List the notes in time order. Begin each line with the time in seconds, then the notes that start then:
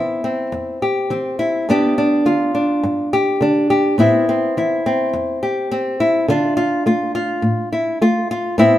Already playing: E3 B3 C4 E4
0.24 C4
0.52 E2
0.82 G4
1.10 E3 C4
1.39 E4
1.69 G2 B3 D4 G4
1.98 D4
2.26 D3 F4
2.55 D4
2.83 G2
3.13 G4
3.41 D3 D4
3.70 G4
3.98 A2 B3 C4 E4
4.29 C4
4.57 E3 E4
4.86 C4
5.13 E2
5.43 G4
5.71 C4
6.00 E4
6.28 D3 D4 F4
6.57 F4
6.86 A3 F4
7.15 F4
7.42 A2
7.73 E4
8.01 A3 F4
8.31 F4
8.58 A2 B3 C4 E4